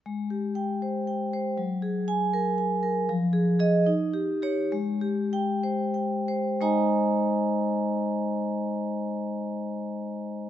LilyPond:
\new Staff \with { instrumentName = "Vibraphone" } { \time 6/8 \key aes \major \tempo 4. = 67 << { r4 g''4 r4 | r4 aes''4 r4 | r4 ees''8 r4 des''8 | r4 g''4 r4 |
<aes ees' c'' ees'' aes'' bes''>2.~ | <aes ees' c'' ees'' aes'' bes''>2. | } \\ { aes8 g'4 c''8 g''8 c''8 | ges8 aes'4 bes'8 aes''8 bes'8 | f8 aes'8 aes'8 ees'8 g'8 g'8 | aes8 g'4 c''8 g''8 c''8 |
r2. | r2. | } >> }